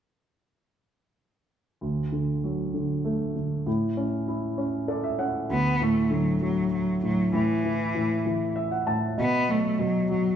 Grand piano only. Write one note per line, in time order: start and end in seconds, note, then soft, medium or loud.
1.81 3.62 D2 soft
2.12 2.72 D3 soft
2.44 3.63 F#3 soft
2.74 3.34 D3 soft
3.05 3.64 A3 soft
3.36 3.65 D3 soft
3.66 5.46 A2 soft
3.97 4.56 C#4 soft
4.28 5.46 E4 soft
4.58 5.17 C#4 soft
4.88 5.48 A4 soft
4.88 5.03 D5 soft
5.04 5.18 E5 soft
5.19 5.49 C#4 soft
5.19 5.47 F#5 soft
5.50 7.30 D2 soft
5.80 6.99 A2 soft
6.10 7.30 D3 soft
6.41 7.30 F#3 soft
7.02 7.32 A2 soft
7.33 7.93 A2 soft
7.64 8.24 E3 soft
7.94 8.86 A2 soft
8.26 9.14 E3 soft
8.56 8.70 E5 soft
8.71 8.85 F#5 soft
8.87 9.16 A2 soft
8.87 9.15 A5 soft
9.18 9.77 B2 soft
9.48 10.08 F#3 soft
9.78 10.36 B2 soft
10.09 10.36 F#3 soft